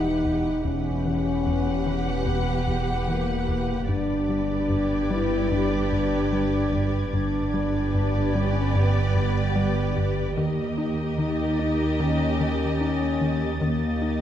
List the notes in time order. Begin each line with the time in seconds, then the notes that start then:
Already playing: E1 E2 D#4 G4 B4 E5 F#5
0.25 E2
0.64 E1 E2 C#4 G4 B4 F#5
1.05 E3
1.46 E2
1.86 E3
2.26 E2 B3
2.67 E2
3.08 E3 A#3
3.48 E2
3.88 G1 G2 D4 G4 B4 D5 D6
4.29 G3
4.69 G2 G#6
5.10 G3 B3 E4 B4
5.51 G2 D4
5.92 G2
6.33 G3
6.73 G2
7.12 G1 G2 D4 G4 B4 D5
7.54 G3
7.94 G2 D5
8.34 G3 C#4
8.75 G2 B3
9.15 G2
9.56 G3
9.96 G2 G4
10.36 D#2 D#3 G4 A#4 D#5 D#6
10.78 D#4
11.18 D#3 D#4 A6
11.59 D#4
11.99 D#3 C#4
12.41 D#3
12.81 D#4
13.21 D#3
13.61 D#2 D#3 A#3 G4 A#4 D#5, cymbal swell
14.02 D#4